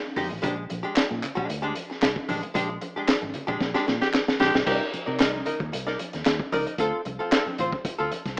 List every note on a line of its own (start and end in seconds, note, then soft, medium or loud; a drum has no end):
0.16 0.29 F2 medium
0.16 0.33 G#3 medium
0.16 0.29 D#4 medium
0.16 0.28 G4 medium
0.16 open hi-hat medium
0.16 muted conga soft
0.16 high conga medium
0.16 low conga medium
0.30 0.42 A1 medium
0.30 muted hollow-body jazz guitar stroke soft
0.42 0.65 A#1 loud
0.42 0.63 G#3 medium
0.42 0.56 D4 medium
0.42 0.55 G4 medium
0.42 kick medium
0.42 closed hi-hat loud
0.42 low conga medium
0.56 muted hollow-body jazz guitar stroke soft
0.70 0.82 A#1 loud
0.70 muted hollow-body jazz guitar stroke soft
0.70 closed hi-hat medium
0.70 muted conga soft
0.70 high conga medium
0.83 0.94 G#3 medium
0.83 0.94 D4 medium
0.83 0.95 G4 medium
0.95 muted hollow-body jazz guitar stroke soft
0.95 muted fingered electric bass stroke medium
0.95 snare loud
0.95 clap loud
0.95 closed hi-hat medium
0.95 muted conga soft
1.09 1.21 A#2 medium
1.09 muted hollow-body jazz guitar stroke medium
1.09 high conga medium
1.23 clap medium
1.23 closed hi-hat medium
1.23 muted conga soft
1.23 low conga medium
1.35 1.47 A#1 medium
1.35 1.47 G#3 medium
1.35 1.48 D4 medium
1.35 1.48 G4 medium
1.35 kick loud
1.49 1.71 D2 loud
1.49 muted hollow-body jazz guitar stroke soft
1.49 closed hi-hat medium
1.49 muted conga soft
1.62 1.74 G#3 medium
1.62 1.75 D4 medium
1.62 1.75 G4 medium
1.75 muted hollow-body jazz guitar stroke soft
1.75 closed hi-hat medium
1.75 high conga medium
1.90 muted hollow-body jazz guitar stroke soft
1.90 snare soft
2.02 2.14 C2 medium
2.02 muted hollow-body jazz guitar stroke soft
2.02 snare loud
2.02 clap loud
2.02 closed hi-hat medium
2.16 kick medium
2.29 2.41 A1 medium
2.29 2.45 G#3 medium
2.29 2.41 D4 medium
2.29 2.40 G4 medium
2.29 open hi-hat medium
2.29 muted conga soft
2.29 high conga medium
2.29 low conga medium
2.42 muted hollow-body jazz guitar stroke medium
2.42 closed hi-hat medium
2.54 2.77 A#1 loud
2.54 2.75 G#3 medium
2.54 2.69 D4 medium
2.54 2.68 G4 medium
2.54 kick medium
2.54 closed hi-hat loud
2.54 low conga medium
2.70 muted hollow-body jazz guitar stroke soft
2.81 muted hollow-body jazz guitar stroke soft
2.81 closed hi-hat medium
2.81 muted conga soft
2.81 high conga medium
2.96 3.07 G#3 medium
2.96 3.08 D4 medium
2.96 3.08 G4 medium
2.96 muted fingered electric bass stroke soft
3.08 muted hollow-body jazz guitar stroke soft
3.08 muted fingered electric bass stroke medium
3.08 snare loud
3.08 clap loud
3.08 closed hi-hat loud
3.22 3.32 G#1 medium
3.22 muted hollow-body jazz guitar stroke soft
3.22 high conga medium
3.34 closed hi-hat medium
3.34 muted conga soft
3.34 low conga medium
3.47 3.59 A#1 medium
3.47 3.60 G#3 medium
3.47 3.60 D4 medium
3.47 3.61 G4 medium
3.47 kick loud
3.61 3.72 A#1 loud
3.61 muted hollow-body jazz guitar stroke soft
3.61 kick loud
3.61 snare medium
3.61 muted conga soft
3.74 3.85 G#3 medium
3.74 3.86 D4 medium
3.74 3.86 G4 loud
3.74 snare medium
3.87 3.99 A#2 loud
3.87 muted hollow-body jazz guitar stroke medium
3.87 snare medium
3.87 muted conga soft
3.87 high conga medium
4.01 4.09 G4 loud
4.01 muted hollow-body jazz guitar stroke medium
4.01 snare medium
4.13 muted hollow-body jazz guitar stroke soft
4.13 snare medium
4.13 clap loud
4.13 muted conga soft
4.28 snare medium
4.40 4.52 A#1 medium
4.40 4.57 G#3 medium
4.40 4.54 D4 medium
4.40 4.57 G4 loud
4.40 4.53 G4 medium
4.40 snare medium
4.40 muted conga soft
4.40 high conga medium
4.40 low conga medium
4.55 4.65 B1 medium
4.55 muted hollow-body jazz guitar stroke soft
4.55 snare medium
4.66 4.78 C2 loud
4.66 4.87 D#4 medium
4.66 4.83 G4 medium
4.66 4.88 A#4 medium
4.66 4.88 D5 medium
4.66 kick loud
4.66 crash medium
4.92 muted hollow-body jazz guitar stroke soft
4.92 muted fingered electric bass stroke soft
4.92 closed hi-hat medium
4.92 muted conga soft
4.92 high conga medium
5.06 5.18 C3 medium
5.06 5.18 D#4 soft
5.06 5.19 A#4 medium
5.06 5.19 D5 medium
5.19 5.41 C2 medium
5.19 5.40 D#4 medium
5.19 5.32 A#4 medium
5.19 5.32 D5 medium
5.19 snare loud
5.19 clap loud
5.19 closed hi-hat loud
5.33 muted hollow-body jazz guitar stroke soft
5.33 high conga medium
5.45 5.62 D#4 medium
5.45 5.60 A#4 medium
5.45 5.60 D#5 medium
5.45 closed hi-hat medium
5.45 low conga medium
5.60 5.71 D#2 medium
5.60 muted hollow-body jazz guitar stroke medium
5.60 kick medium
5.72 5.95 C2 medium
5.72 muted hollow-body jazz guitar stroke soft
5.72 closed hi-hat medium
5.72 muted conga soft
5.87 5.98 D#4 medium
5.87 5.99 A#4 medium
5.87 5.99 D5 medium
5.87 snare soft
5.99 muted hollow-body jazz guitar stroke soft
5.99 closed hi-hat medium
5.99 muted conga soft
5.99 high conga medium
6.13 6.24 D#2 medium
6.13 muted hollow-body jazz guitar stroke soft
6.13 snare soft
6.13 closed hi-hat medium
6.25 6.38 D#2 medium
6.25 snare loud
6.25 clap medium
6.25 closed hi-hat medium
6.25 muted conga soft
6.39 muted hollow-body jazz guitar stroke soft
6.39 kick medium
6.52 6.65 C#2 medium
6.52 6.73 D#4 medium
6.52 6.66 A#4 medium
6.52 6.65 D5 loud
6.52 open hi-hat medium
6.52 muted conga soft
6.52 high conga medium
6.52 low conga medium
6.66 muted hollow-body jazz guitar stroke soft
6.66 closed hi-hat medium
6.78 6.90 D2 loud
6.78 7.00 C4 medium
6.78 7.00 F4 medium
6.78 7.00 A4 medium
6.78 kick loud
6.78 closed hi-hat medium
7.05 7.17 C2 medium
7.05 muted hollow-body jazz guitar stroke soft
7.05 closed hi-hat medium
7.05 muted conga soft
7.05 high conga medium
7.19 7.30 C4 medium
7.19 7.32 F4 medium
7.19 7.32 A4 medium
7.31 7.53 C4 medium
7.31 7.46 F4 medium
7.31 7.45 A4 medium
7.31 snare loud
7.31 clap loud
7.31 closed hi-hat medium
7.31 muted conga soft
7.46 muted fingered electric bass stroke soft
7.46 muted hollow-body jazz guitar stroke soft
7.46 high conga medium
7.58 7.70 A1 loud
7.58 7.75 C4 medium
7.58 7.72 F4 medium
7.58 7.72 C5 medium
7.58 closed hi-hat medium
7.58 muted conga soft
7.58 low conga medium
7.72 muted hollow-body jazz guitar stroke soft
7.72 kick medium
7.85 muted hollow-body jazz guitar stroke soft
7.85 kick loud
7.85 closed hi-hat medium
7.98 8.10 D2 medium
7.98 8.10 C4 medium
7.98 8.11 F4 medium
7.98 8.11 A4 medium
8.11 muted hollow-body jazz guitar stroke soft
8.11 closed hi-hat medium
8.11 muted conga soft
8.11 high conga medium
8.25 8.36 C2 medium
8.25 muted hollow-body jazz guitar stroke soft
8.25 kick medium
8.25 snare soft
8.25 closed hi-hat soft